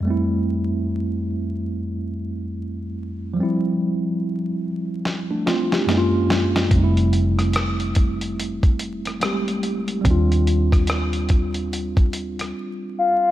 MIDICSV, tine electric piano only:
0, 0, Header, 1, 2, 480
1, 0, Start_track
1, 0, Key_signature, -1, "major"
1, 0, Tempo, 833333
1, 26, Time_signature, 4, 2, 24, 8
1, 7668, End_track
2, 0, Start_track
2, 0, Title_t, "Tine electric piano"
2, 0, Program_c, 0, 4
2, 3, Note_on_c, 0, 41, 58
2, 16, Note_on_c, 0, 55, 51
2, 30, Note_on_c, 0, 57, 52
2, 43, Note_on_c, 0, 60, 49
2, 61, Note_on_c, 0, 64, 59
2, 116, Control_c, 0, 64, 127
2, 1911, Note_off_c, 0, 41, 0
2, 1918, Note_off_c, 0, 55, 0
2, 1921, Note_on_c, 0, 53, 55
2, 1925, Note_off_c, 0, 57, 0
2, 1932, Note_off_c, 0, 60, 0
2, 1938, Note_on_c, 0, 55, 51
2, 1940, Note_off_c, 0, 64, 0
2, 1954, Control_c, 0, 64, 0
2, 1961, Note_on_c, 0, 60, 52
2, 1977, Note_on_c, 0, 64, 59
2, 2044, Control_c, 0, 64, 127
2, 2894, Note_off_c, 0, 60, 0
2, 2902, Note_off_c, 0, 64, 0
2, 3057, Note_on_c, 0, 62, 54
2, 3058, Note_on_c, 0, 57, 44
2, 3144, Note_off_c, 0, 62, 0
2, 3145, Note_off_c, 0, 57, 0
2, 3147, Note_on_c, 0, 65, 62
2, 3150, Note_on_c, 0, 60, 54
2, 3284, Note_off_c, 0, 65, 0
2, 3286, Note_off_c, 0, 60, 0
2, 3297, Note_on_c, 0, 67, 52
2, 3298, Note_on_c, 0, 62, 41
2, 3351, Note_off_c, 0, 53, 0
2, 3359, Note_off_c, 0, 55, 0
2, 3379, Note_on_c, 0, 42, 64
2, 3384, Note_on_c, 0, 56, 55
2, 3391, Note_on_c, 0, 58, 59
2, 3393, Control_c, 0, 64, 0
2, 3399, Note_on_c, 0, 61, 57
2, 3406, Note_on_c, 0, 64, 55
2, 3441, Note_off_c, 0, 64, 0
2, 3444, Note_on_c, 0, 65, 74
2, 3492, Control_c, 0, 64, 127
2, 3522, Note_off_c, 0, 67, 0
2, 3523, Note_off_c, 0, 62, 0
2, 3846, Note_on_c, 0, 55, 59
2, 3862, Note_off_c, 0, 42, 0
2, 3862, Note_on_c, 0, 57, 53
2, 3865, Note_off_c, 0, 56, 0
2, 3868, Note_off_c, 0, 58, 0
2, 3872, Note_off_c, 0, 61, 0
2, 3874, Control_c, 0, 64, 0
2, 3883, Note_on_c, 0, 60, 50
2, 3895, Note_off_c, 0, 65, 0
2, 3901, Note_on_c, 0, 63, 57
2, 3929, Note_off_c, 0, 63, 0
2, 3939, Note_on_c, 0, 64, 67
2, 3968, Control_c, 0, 64, 127
2, 5273, Note_off_c, 0, 55, 0
2, 5281, Note_off_c, 0, 57, 0
2, 5291, Note_off_c, 0, 60, 0
2, 5302, Note_on_c, 0, 55, 50
2, 5312, Note_on_c, 0, 56, 34
2, 5319, Note_off_c, 0, 64, 0
2, 5323, Note_on_c, 0, 60, 43
2, 5328, Note_on_c, 0, 67, 51
2, 5348, Note_on_c, 0, 57, 42
2, 5354, Note_off_c, 0, 56, 0
2, 5760, Note_off_c, 0, 55, 0
2, 5767, Note_on_c, 0, 55, 58
2, 5777, Note_off_c, 0, 60, 0
2, 5784, Note_on_c, 0, 60, 53
2, 5793, Control_c, 0, 64, 0
2, 5797, Note_off_c, 0, 67, 0
2, 5802, Note_on_c, 0, 62, 52
2, 5807, Note_off_c, 0, 57, 0
2, 5821, Note_on_c, 0, 65, 65
2, 5880, Control_c, 0, 64, 127
2, 7668, Note_off_c, 0, 55, 0
2, 7668, Note_off_c, 0, 60, 0
2, 7668, Note_off_c, 0, 62, 0
2, 7668, Note_off_c, 0, 65, 0
2, 7668, End_track
0, 0, End_of_file